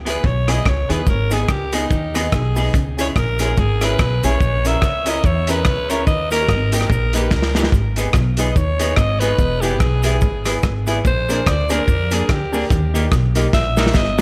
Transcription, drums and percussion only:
0.06 closed hi-hat
0.24 kick
0.48 cross-stick, closed hi-hat
0.66 kick, cross-stick
0.90 closed hi-hat
1.07 kick, cabasa
1.31 closed hi-hat, cabasa
1.49 kick, cross-stick, cabasa
1.73 closed hi-hat, cabasa
1.91 kick, cabasa
2.15 cross-stick, closed hi-hat, cabasa
2.32 kick, cross-stick, cabasa
2.56 open hi-hat, cabasa
2.74 kick, hi-hat pedal, cabasa
2.98 closed hi-hat, cabasa
3.16 kick, cross-stick, cabasa
3.39 closed hi-hat, cabasa
3.57 kick, cabasa
3.81 cross-stick, closed hi-hat, cabasa
3.99 kick, cross-stick, cabasa
4.23 closed hi-hat, cabasa
4.41 kick, cabasa
4.65 closed hi-hat, cabasa
4.82 kick, cross-stick, cabasa
5.06 closed hi-hat, cabasa
5.24 kick, cabasa
5.47 closed hi-hat, cabasa
5.65 kick, cross-stick, cabasa
5.90 closed hi-hat, cabasa
6.07 kick, cabasa
6.31 closed hi-hat, cabasa
6.49 kick, cross-stick, cabasa
6.72 closed hi-hat, cabasa
6.81 cross-stick
6.90 kick, cabasa
7.13 closed hi-hat, cabasa
7.31 kick, snare, cabasa
7.42 snare
7.55 snare, cabasa
7.63 snare
7.72 kick, cabasa
7.96 closed hi-hat, cabasa
8.13 kick, cross-stick, cabasa
8.37 closed hi-hat, cabasa
8.56 kick, cabasa
8.79 closed hi-hat, cabasa
8.96 kick, cross-stick, cabasa
9.20 closed hi-hat, cabasa
9.39 kick, cabasa
9.62 closed hi-hat, cabasa
9.80 kick, cross-stick, cabasa
10.03 closed hi-hat, cabasa
10.21 kick, cabasa
10.45 cross-stick, closed hi-hat, cabasa
10.63 kick, cross-stick, cabasa
10.87 closed hi-hat, cabasa
11.05 kick, cabasa
11.29 closed hi-hat, cabasa
11.46 kick, cross-stick, cabasa
11.69 closed hi-hat, cabasa
11.88 kick, cabasa
12.11 closed hi-hat, cabasa
12.29 kick, cross-stick, cabasa
12.53 open hi-hat, cabasa
12.70 kick, hi-hat pedal, cabasa
12.95 closed hi-hat, cabasa
13.12 kick, cross-stick, cabasa
13.35 closed hi-hat, cabasa
13.53 kick, snare, cabasa
13.77 snare, cabasa
13.86 snare
13.94 kick, snare, cabasa

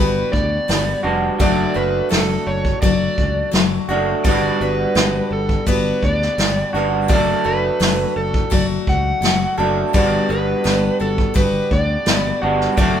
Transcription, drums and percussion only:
0.33 kick
0.69 snare, open hi-hat
1.40 kick, open hi-hat
2.11 snare, open hi-hat
2.65 kick
2.83 kick, open hi-hat
3.18 kick
3.53 snare, open hi-hat
4.24 kick, open hi-hat
4.95 snare, open hi-hat
5.49 kick
5.66 kick, open hi-hat
6.03 kick
6.22 snare
6.38 snare, open hi-hat
7.09 kick, open hi-hat
7.81 snare, open hi-hat
8.34 kick
8.52 kick, open hi-hat
8.87 kick
9.23 snare, open hi-hat
9.94 kick, open hi-hat
10.65 snare, open hi-hat
11.18 kick
11.36 kick, open hi-hat
11.71 kick
12.06 snare, open hi-hat
12.61 snare
12.77 kick, open hi-hat

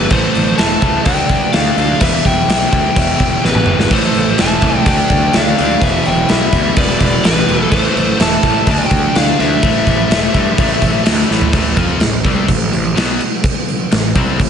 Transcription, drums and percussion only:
0.10 kick, crash
0.35 crash
0.58 snare, crash
0.82 kick, crash
1.05 kick, crash
1.29 kick, crash
1.53 snare, crash
1.78 crash
2.00 kick, crash
2.25 kick, crash
2.49 snare, crash
2.73 kick, crash
2.96 kick, crash
3.20 kick, crash
3.45 snare
3.55 mid tom
3.66 mid tom
3.80 snare
3.91 kick, crash
4.14 crash
4.38 snare, crash
4.62 kick, crash
4.86 kick, crash
5.10 kick, crash
5.33 snare, crash
5.58 crash
5.82 kick, crash
6.05 crash
6.29 snare, crash
6.52 kick, crash
6.76 kick, crash
7.01 kick, crash
7.24 snare, crash
7.48 crash
7.72 kick, crash
7.97 crash
8.20 snare, crash
8.43 kick, crash
8.67 kick, crash
8.91 kick, crash
9.15 snare, crash
9.40 crash
9.63 kick, crash
9.87 kick, crash
10.11 snare, crash
10.34 kick, crash
10.58 kick, crash
10.82 kick, crash
11.06 snare, crash
11.31 snare
11.41 floor tom
11.53 kick, crash
11.77 kick, crash
12.00 snare, crash
12.25 kick, crash
12.48 kick, crash
12.73 crash
12.97 snare, crash
13.21 crash
13.44 kick, crash
13.68 crash
13.92 snare, crash
14.16 kick, crash
14.40 kick, crash

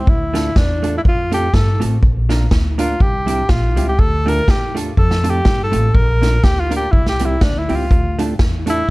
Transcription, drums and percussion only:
0.07 kick
0.35 snare, closed hi-hat
0.56 kick, snare
0.84 closed hi-hat
1.05 kick
1.32 closed hi-hat
1.54 kick, snare
1.82 closed hi-hat
2.03 kick
2.30 snare, closed hi-hat
2.51 kick, snare
2.79 closed hi-hat
3.00 kick
3.28 closed hi-hat
3.49 kick, snare
3.77 closed hi-hat
3.99 kick
4.28 closed hi-hat
4.48 kick, snare
4.77 closed hi-hat
4.97 kick
5.11 snare
5.24 closed hi-hat
5.45 kick, snare
5.73 closed hi-hat
5.95 kick
6.22 snare, closed hi-hat
6.44 kick, snare
6.72 closed hi-hat
6.93 kick
7.06 snare
7.19 closed hi-hat
7.41 kick, snare
7.69 open hi-hat
7.91 kick, hi-hat pedal
8.19 closed hi-hat
8.39 kick, snare
8.67 closed hi-hat

